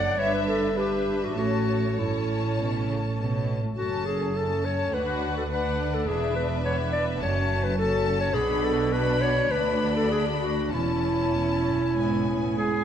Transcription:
Already playing: F#1 F#2 D4 A4 D5 F#5
0.18 G1 G2 D4 B4 C#5 E5
0.34 B4
0.47 A4
0.77 D4 G4 B4 E5
1.24 F#4
1.37 A1 A2 C#4 F#4 A4 C#5 A5
1.98 G2 C#4 E4 A4 A5
2.28 A2
2.59 B2
2.88 C#3
3.18 B2
3.62 A2
3.76 F#1 F#2 C#4 F#4 A4 A5
4.06 G#4
4.34 C#4 A4 A5
4.65 C#5
4.93 D2 D4 F#4 B4 F#5
5.37 A4
5.50 D4 B4 F#5
5.94 A4
6.07 E1 E2 D4 G#4 B4 E5
6.36 B4
6.65 B3 C#5
6.92 D5
7.20 F#1 F#2 A3 C#4 F#4 C#5 A5
7.64 B4
7.78 C#4 F#4 A4 A5
8.21 C#5
8.34 B1 B2 B3 D4 F#4 G#4 B5
8.64 A4
8.92 D4 F#4 B4 B5
9.22 C#5
9.50 D2 D4 F#4 B4 B5
9.97 A4
10.11 G#4
10.42 F#4
10.71 E1 E2 C#4 E4 A5
11.35 E2
11.66 F#2
11.96 G#2 B3 E4 G#5
12.27 A2
12.58 G#2 E4 G#4

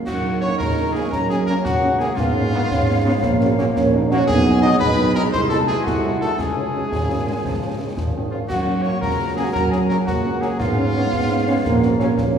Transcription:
0.05 F#2 D#4 F#4 F#5, concert bass drum, snare, crash
0.24 A#3 C#4
0.41 C#3 A#3 C#4 C#5 C#6
0.58 C#2 A#4 A#5, concert bass drum, snare
0.78 A#3 C#4
0.92 C#3 A#3 C#4 G#4 G#5
1.09 F#2 C#4 A#4 A#5, concert bass drum, snare
1.29 A#3 C#4 G#4 G#5, snare
1.46 C#3 A#3 C#4 A#4 A#5, snare
1.64 C#2 F#4 F#5, concert bass drum, snare
1.83 A#3 C#4
1.99 C#3 A#3 C#4 G#4 G#5, snare
2.15 G#2 B3 F4 F5, concert bass drum, snare, crash
2.35 G#3 A#3 B3 C#4
2.52 C#3 G#3 B3 C#4
2.69 G#2 C#4, concert bass drum, snare
2.87 G#3 B3 C#4
3.04 C#3 G#3 B3 C#4
3.22 A#1 A#3, concert bass drum, snare
3.40 F#3 A#3 C#4, snare
3.57 F#3 A#3 C#4, snare
3.75 A#1 C#4, concert bass drum, snare
3.92 F#3 A#3 C#4 D#4
4.10 F#3 A#3 C#4 F#4 F#5, snare
4.27 B1 B3 G#4 G#5, concert bass drum, snare, crash
4.46 D#3 G#3 D#4
4.62 D#3 G#3 D#4 D#5 D#6
4.79 B1 G#3 B4 B5, concert bass drum, snare
4.99 D#3 G#3 D#4
5.15 D#3 G#3 D#4 A#4 A#5
5.32 C2 C5 C6, concert bass drum, snare
5.49 F#3 A3 D#4 A4 A5, snare
5.67 D#3 F#3 A3 D#4 G#4 G#5, snare
5.84 C2 A3 F#4 F#5, concert bass drum, snare
6.03 F#3 A3 D#4
6.21 D#3 F#3 A3 D#4 A4 A5, snare
6.38 C#2 G#3 G#4 G#5, concert bass drum, snare, crash
6.56 F#3 G#3 C#4
6.74 F#3 G#3 C#4
6.91 G#1 C#3, concert bass drum, snare
7.09 F#3 G#3 C#4
7.26 F#3 G#3 C#4
7.43 C#2 F3, concert bass drum, snare
7.61 F3 G#3 C#4
7.79 D#3 F3 G#3 C#4
7.97 G#1 F3, concert bass drum, snare
8.15 D#3 F3 G#3 C#4
8.31 F3 G#3 C#4 F4 F5
8.48 F#2 F#4 F#5, concert bass drum, snare, crash
8.67 A#3 C#4
8.82 F#3 A#3 C#4 C#5 C#6
9.01 C#2 F#3 A#4 A#5, concert bass drum, snare
9.18 A#3 C#4
9.36 F#3 A#3 C#4 G#4 G#5
9.52 F#2 A#4 A#5, concert bass drum, snare
9.71 A#3 C#4 G#4 G#5, snare
9.88 F#3 A#3 C#4 A#4 A#5, snare
10.05 C#2 A#3 F#4 F#5, concert bass drum, snare
10.23 A#3 C#4
10.40 F#3 A#3 C#4 G#4 G#5, snare
10.59 G#2 B3 F4 F5, concert bass drum, snare, crash
10.76 G#3 B3 C#4
10.94 G#3 B3 C#4
11.11 G#2, concert bass drum, snare
11.29 G#3 B3 C#4
11.47 G#3 B3 C#4
11.64 A#1 A#3, concert bass drum, snare
11.82 F#3 A#3 C#4, snare
11.99 F#3 A#3 C#4, snare
12.17 A#1 C#4, concert bass drum, snare
12.34 F#3 A#3 C#4

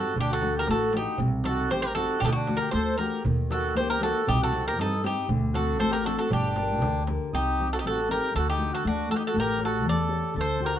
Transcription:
Already playing: G3 C4 D#4 F#4 G4 A4
0.16 D2 D3, darbuka dum
0.20 D4 G4
0.30 F#4 A4
0.42 A3 D4 F#4, darbuka tek
0.55 G4, darbuka tek
0.59 A#4
0.67 A1 A3 F#4 A4, darbuka tek
0.93 A3 D4 F#4 G4, darbuka tek
0.97 D#4
1.18 C2 C3, darbuka dum
1.43 C4 D#4 G4 A4, darbuka tek
1.48 F#4
1.70 A1 G3 G4 C5, darbuka tek
1.82 G4 A#4
1.95 C4 D#4 F#4 G4 A4, darbuka tek
2.20 D2 D3 D4 G4, darbuka dum
2.25 D#4 F#4 G4 A4
2.32 D4 F#4, darbuka tek
2.47 A3 D4 F#4, darbuka tek
2.57 A#4
2.61 G4
2.71 D2 A3 A4 C5, darbuka tek
2.98 A3 D4 F#4 G4 A#4, darbuka tek
3.12 darbuka tek
3.25 D#2 D#3, darbuka dum
3.49 A#3 D#4 F#4 G4 A4, darbuka tek
3.75 C#2 A#3 G4 C5, darbuka tek
3.90 G4 A#4
4.01 A#3 D#4 F#4 G4 A4, darbuka tek
4.27 C2 C3 D#4 G4, darbuka dum
4.42 F#4 A4
4.52 C4 D#4 G4, darbuka tek
4.66 G4 A#4, darbuka tek
4.78 G2 G3 D#4 A4, darbuka tek
5.03 C4 D#4 G4, darbuka tek
5.29 D2 D3, darbuka dum
5.54 C4 D4 F#4 A4, darbuka tek
5.68 darbuka tek
5.79 A1 A3 A4 C5, darbuka tek
5.91 G4 A#4
6.03 C4 D4 F#4 A4, darbuka tek
6.08 F#4
6.19 F#4 A4
6.30 G1 G3 D4 G4, darbuka dum
6.43 darbuka tek
6.56 D4 G4 A#4, darbuka tek
6.69 darbuka tek
6.82 D2 D3, darbuka tek
7.07 D4 G4 A#4, darbuka tek
7.33 C2 C3 D#4 G4
7.60 C4 D#4 G4
7.73 F#4 A4
7.79 D#4 G4
7.84 A1 G3 A4
7.89 F#4
8.09 C4 D#4 G4 A#4
8.34 D2 D3 F#4 A4
8.49 D#4 G4
8.59 A3 D4 F#4
8.73 F#4 A4
8.85 D2 A3 D4 F#4
9.09 A3 D4 F#4 A4
9.16 D#4 G4
9.27 F#4 A4
9.34 A1 A3
9.39 G4 A#4
9.58 G4 A4 C#5
9.64 F#4 A4
9.84 E2 E3
9.89 A4 D5
10.08 G4 A4 C#5
10.34 D2 D3 A4
10.41 C5
10.60 D4 F#4 G4 A4
10.66 A#4
10.75 F#4

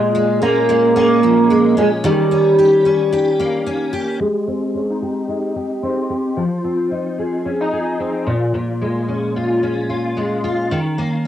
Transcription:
Already playing: A#2 G#3
0.15 G#3
0.42 A#3 C#4
0.69 G#3
0.96 A#3 C#4
1.23 F3
1.50 G#3
1.77 G#3 C#4
2.04 D#3 G3
2.31 C#4
2.59 G4
2.85 C#4
3.12 G4
3.39 A#3
3.66 C#4
3.93 G4
4.20 G#3
4.47 C4
4.74 C#4
4.90 D#4
5.02 G4
5.28 D#4
5.56 G4
5.83 C4
6.10 G4
6.37 F3
6.64 C4
6.91 D#4
7.18 G#4
7.45 C#4
7.61 D#4
7.73 G#4
8.00 C4
8.26 A#2
8.54 A#2
8.81 G#3
9.08 C#4
9.36 F4
9.63 C#4
9.90 F4
10.17 G#3
10.44 F4
10.71 D#3
10.98 A#3

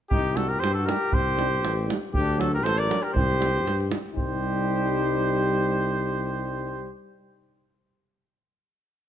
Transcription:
0.10 C2 D#4 G4, davul low
0.34 G3 D#4 F#4 A4, davul high
0.49 G4 A#4
0.60 G2 C5, davul high
0.64 G4
0.74 F#4 A4
0.84 G3 D#4 A#4
0.89 G4, davul high
1.13 C2 G4 C5, davul low
1.38 G3 D#4, davul high
1.63 A1, davul high
1.86 G3 D#4
1.90 davul high
2.13 D2 G4, davul low
2.18 D4
2.37 F#3 D4 F#4 A4
2.41 davul high
2.54 G4 A#4
2.63 A1 A4 C5, davul high
2.78 A#4 D5
2.87 F#3 D4
2.91 davul high
3.02 G4 A#4
3.13 C2 G4 C5, davul low
3.31 davul high
3.37 G3 D#4
3.42 davul high
3.56 davul high
3.65 G2, davul high
3.80 davul high
3.88 G3 D#4, davul high
4.06 davul high
4.14 C2 G3 D#4 G4 C5, davul low

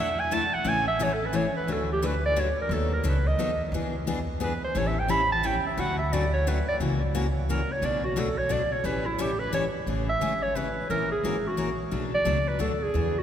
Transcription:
Already playing: E2
0.00 E5
0.20 G#5
0.31 E3 A3 D4 E4 A4 A5
0.54 F#5
0.64 A1 C#3 E3 A3 C#4 G#4
0.69 G#5
0.88 E5
0.99 C#3 E3 A3 C#4 G#4
1.04 C#5
1.14 A4
1.26 B4
1.33 C#3 E3 A3 C#4 G#4 C#5
1.57 B4
1.67 D2 D3 F#3 A3 D4 F#4 B4
1.73 A4
1.93 G4
2.02 D3 F#3 A3 D4 F#4 B4
2.06 B4
2.26 D5
2.36 D3 F#3 A3 D4 F#4 B4 C#5
2.62 A#4
2.69 D#2 D#3 F#3 B3 D#4 A4
2.74 A4
2.94 A#4
3.04 C#2 D#3 F#3 B3 D#4 A4
3.08 B4
3.28 D#5
3.38 D#2 D#3 F#3 B3 D#4 A4
3.72 E2 E3 B3 D4 G#4
4.07 E3 B3 D4 G#4
4.40 E3 B3 D4 G#4
4.44 B4
4.64 C5
4.75 A1 E3 G3 C#4 E4 A4 C#5
4.88 E5
5.00 G5
5.08 E3 G3 C#4 E4 A4 B5
5.33 A5
5.43 E3 G3 C#4 E4 A4 G5
5.67 E5
5.77 D2 D3 F#3 A3 C#4 F#4 F#5
5.99 E5
6.13 D3 F#3 A3 C#4 F#4 D5
6.33 C#5
6.47 D3 F#3 A3 C#4 F#4 B4
6.69 D5
6.80 C#2 C#3 E3 A#3 C#4 F#4
7.15 C#3 E3 A#3 C#4 F#4
7.49 C#3 E3 A#3 C#4 F#4 A#4
7.72 C#5
7.82 B1 B2 F#3 A3 D4 F#4 D5
8.04 F#4
8.16 B2 F#3 A3 D4 F#4 A4
8.38 C#5
8.49 B2 F#3 A3 D4 F#4 D5
8.72 C#5
8.84 A1 E3 G3 C#4 E4 A4 B4
9.06 E4
9.18 E3 G3 C#4 E4 G4 A4
9.39 B4
9.53 E3 G3 C#4 E4 A4 C#5
9.86 A1 C#3 E3 A3 C#4 G#4
10.09 E5
10.21 G#1 C#3 E3 A3 C#4 G#4
10.43 C#5
10.55 A1 C#3 E3 A3 C#4 G#4 B4
10.90 A#1 E3 A#3 C#4 F#4 A#4
11.12 G#4
11.23 G#1 E3 A#3 C#4 F#4 A#4
11.47 F#4
11.57 A#1 E3 A#3 C#4 F#4 A#4
11.91 B1 B2 F#3 A3 D4 F#4
12.15 D5
12.25 C#2 B2 F#3 A3 D4 F#4
12.48 B4
12.59 D2 B2 F#3 A3 D4 F#4 A4
12.83 G#4
12.94 E2 E3 B3 D4 G#4
13.19 F#4

